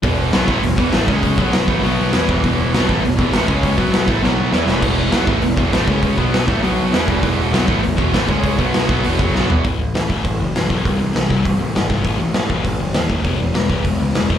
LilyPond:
<<
  \new Staff \with { instrumentName = "Distorted electric guitar" } { \clef bass \time 4/4 \key e \major \tempo 4 = 200 <e, b, e>4 <b, fis b>8 <a, e a>8 <e, b,>8 <e, b, e>8 <a, e a>8 <cis gis cis'>8~ | <cis gis cis'>8 <b, fis b>4 <a, e a>8 <b, fis b>4 <e b e'>8 <e, b, e>8 | <e, b, e>4 <b, fis b>8 <a, e a>8 <e, b,>8 <e, b, e>8 <a, e a>8 <cis gis cis'>8~ | <cis gis cis'>8 <b, fis b>4 <a, e a>8 <b, fis b>4 <e b e'>8 <e, b, e>8 |
<e, b, e>4 <b, fis b>8 <a, e a>8 <e, b,>8 <e, b, e>8 <a, e a>8 <cis gis cis'>8~ | <cis gis cis'>8 <b, fis b>4 <a, e a>8 <b, fis b>4 <e b e'>8 <e, b, e>8 | <e, b, e>4 <b, fis b>8 <a, e a>8 <e, b,>8 <e, b, e>8 <a, e a>8 <cis gis cis'>8~ | <cis gis cis'>8 <b, fis b>4 <b, fis b>8 <e, b, e>8 <fis, cis fis>8 <b, fis b>8 <e, b, e>8 |
<a, e a>8 <a, e>8 <a, e>8 <a, e a>8 <a, e>8 <a, e>8 <a, e>8 <a, e a>8 | <c e g>8 <c e>8 <c e>8 <c e g>8 <c e>8 <c e>8 <c e>8 <c e g>8 | <a, e a>8 <a, e>8 <a, e>8 <a, e a>8 <a, e>8 <a, e>8 <a, e>8 <a, e a>8 | <e gis b>8 <e gis>8 <e gis>8 <e gis b>8 <e gis>8 <e gis>8 <e gis>8 <e gis b>8 | }
  \new Staff \with { instrumentName = "Distorted electric guitar" } { \clef bass \time 4/4 \key e \major <e, b, e>4 <b, fis b>8 <a, e a>8 <e, b,>8 <e, b, e>8 <a, e a>8 <cis gis cis'>8~ | <cis gis cis'>8 <b, fis b>4 <a, e a>8 <b, fis b>4 <e b e'>8 <e, b, e>8 | <e, b, e>4 <b, fis b>8 <a, e a>8 <e, b,>8 <e, b, e>8 <a, e a>8 <cis gis cis'>8~ | <cis gis cis'>8 <b, fis b>4 <a, e a>8 <b, fis b>4 <e b e'>8 <e, b, e>8 |
<e, b, e>4 <b, fis b>8 <a, e a>8 <e, b,>8 <e, b, e>8 <a, e a>8 <cis gis cis'>8~ | <cis gis cis'>8 <b, fis b>4 <a, e a>8 <b, fis b>4 <e b e'>8 <e, b, e>8 | <e, b, e>4 <b, fis b>8 <a, e a>8 <e, b,>8 <e, b, e>8 <a, e a>8 <cis gis cis'>8~ | <cis gis cis'>8 <b, fis b>4 <b, fis b>8 <e, b, e>8 <fis, cis fis>8 <b, fis b>8 <e, b, e>8 |
r1 | r1 | r1 | r1 | }
  \new Staff \with { instrumentName = "Distorted electric guitar" } { \clef bass \time 4/4 \key e \major <e, b, e>4 <b, fis b>8 <a, e a>8 <e, b,>8 <e, b, e>8 <a, e a>8 <cis gis cis'>8~ | <cis gis cis'>8 <b, fis b>4 <a, e a>8 <b, fis b>4 <e b e'>8 <e, b, e>8 | <e, b, e>4 <b, fis b>8 <a, e a>8 <e, b,>8 <e, b, e>8 <a, e a>8 <cis gis cis'>8~ | <cis gis cis'>8 <b, fis b>4 <a, e a>8 <b, fis b>4 <e b e'>8 <e, b, e>8 |
<e, b, e>4 <b, fis b>8 <a, e a>8 <e, b,>8 <e, b, e>8 <a, e a>8 <cis gis cis'>8~ | <cis gis cis'>8 <b, fis b>4 <a, e a>8 <b, fis b>4 <e b e'>8 <e, b, e>8 | <e, b, e>4 <b, fis b>8 <a, e a>8 <e, b,>8 <e, b, e>8 <a, e a>8 <cis gis cis'>8~ | <cis gis cis'>8 <b, fis b>4 <b, fis b>8 <e, b, e>8 <fis, cis fis>8 <b, fis b>8 <e, b, e>8 |
r1 | r1 | r1 | r1 | }
  \new Staff \with { instrumentName = "Picked electric bass" } { \clef bass \time 4/4 \key e \major e,,4 b,,8 a,,8 e,,8 e,,8 a,,8 cis,8~ | cis,8 b,,4 a,,8 b,,4 e,8 e,,8 | e,,4 b,,8 a,,8 e,,8 e,,8 a,,8 cis,8~ | cis,8 b,,4 a,,8 b,,4 e,8 e,,8 |
e,,4 b,,8 a,,8 e,,8 e,,8 a,,8 cis,8~ | cis,8 b,,4 a,,8 b,,4 e,8 e,,8 | e,,4 b,,8 a,,8 e,,8 e,,8 a,,8 cis,8~ | cis,8 b,,4 b,,8 e,,8 fis,,8 b,,8 e,,8 |
a,,8 a,,8 a,,4 a,,8 fis,,8 b,,4 | c,8 c,8 c,4 c,8 a,,8 gis,,4 | a,,8 a,,8 a,,4 a,,8 fis,,8 dis,4 | e,,8 e,,8 e,,4 e,,8 cis,8 e,,4 | }
  \new DrumStaff \with { instrumentName = "Drums" } \drummode { \time 4/4 <hho bd>4 <hho sn>8 bd8 hho8 bd8 <hho sn>8 bd8 | <hho bd>8 bd8 <hho sn>8 bd8 hho4 <hho sn>8 bd8 | <hho bd>4 <hho sn>8 bd8 hho8 bd8 <hho sn>8 bd8 | <hho bd>8 bd8 <hho sn>8 bd8 sn4 sn8 sn8 |
<cymc bd>4 <hho sn>8 bd8 hho8 bd8 <hho sn>8 bd8 | <hho bd>8 bd8 <hho sn>8 bd8 hho4 <hho sn>8 bd8 | <hho bd>4 <hho sn>8 bd8 hho8 bd8 <hho sn>8 bd8 | <hho bd>8 bd8 <hho sn>8 bd8 hho8 bd8 sn8 tomfh8 |
<hho bd>4 <hho sn>8 bd8 <hho bd>4 <hho sn>8 bd8 | <hho bd>4 <hho sn>8 bd8 <hho bd>4 <hho sn>8 bd8 | <hho bd>4 <hho sn>8 bd8 <hho bd>4 <hho sn>8 bd8 | <hho bd>4 <hho sn>8 bd8 <hho bd>4 <hho sn>8 bd8 | }
>>